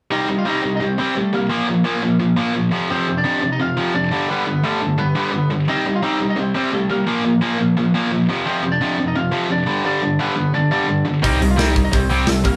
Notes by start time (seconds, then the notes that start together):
0.11 C3 G3 C4 D#4 D#5
0.28 C3 G3
0.38 F4 F5
0.45 C3 G3 C4 D#4 D#5
0.63 C3 G3
0.75 D#4 D#5
0.80 C3 G3 C4 C5
0.98 C3 G3 C4 C5
1.15 C3 G3 A3 A4
1.33 C3 G3 A#3 A#4
1.49 A#2 F3 A#3
1.68 A#2 F3
1.84 A#2 F3 A#3
2.02 A#2 F3
2.20 A#2 F3
2.37 A#2 F3 A#3
2.54 A#2 F3
2.71 F2 C3 F3
2.90 F2 C3 F3 C4 C5
3.08 F2 C3
3.17 D4 D5
3.24 F2 C3 F3
3.42 F2 C3
3.52 D#4 D#5
3.59 F2 C3 F4 F5
3.77 F2 C3 F3
3.94 F2 C3 D4 D5
4.11 G2 D3 G3
4.29 G2 D3 G3 B3 B4
4.46 G2 D3
4.64 G2 D3 G3 A3 A4
4.82 G2 D3
4.98 G2 D3 B3 B4
5.15 G2 D3 G3 B3 B4
5.33 G2 D3
5.50 G2 D3
5.68 C3 G3 C4 D#4 D#5
5.86 C3 G3
5.96 F4 F5
6.03 C3 G3 C4 D#4 D#5
6.20 C3 G3
6.30 D#4 D#5
6.36 C3 G3 C4 C5
6.54 C3 G3 C4 C5
6.72 C3 G3 A3 A4
6.90 C3 G3 A#3 A#4
7.07 A#2 F3 A#3
7.24 A#2 F3
7.41 A#2 F3 A#3
7.59 A#2 F3
7.77 A#2 F3
7.94 A#2 F3 A#3
8.11 A#2 F3
8.29 F2 C3 F3
8.46 F2 C3 F3 C4 C5
8.63 F2 C3
8.72 D4 D5
8.81 F2 C3 F3
8.98 F2 C3
9.07 D#4 D#5
9.15 F2 C3 F4 F5
9.32 F2 C3 F3
9.49 F2 C3 D4 D5
9.66 G2 D3 G3
9.85 G2 D3 G3 D4 D5
10.02 G2 D3
10.19 G2 D3 G3 B3 B4
10.36 G2 D3
10.54 G2 D3 D4 D5
10.71 G2 D3 G3 D4 D5
10.87 G2 D3
11.05 G2 D3
11.22 C2 C3 G3 C4 D#4 D#5, kick, open hi-hat
11.39 C2 C3 G3, open hi-hat
11.51 F4 F5
11.56 C2 C3 G3 C4 D#5, snare, open hi-hat
11.61 D#4
11.74 C3 G3, kick, open hi-hat
11.85 D#4 D#5
11.92 C2 C3 G3 C4 C5, kick, open hi-hat
12.09 C2 C3 G3 C4 C5, open hi-hat
12.27 C2 C3 G3 A3 A4, snare, open hi-hat
12.44 C3 G3 A#3 A#4, kick, open hi-hat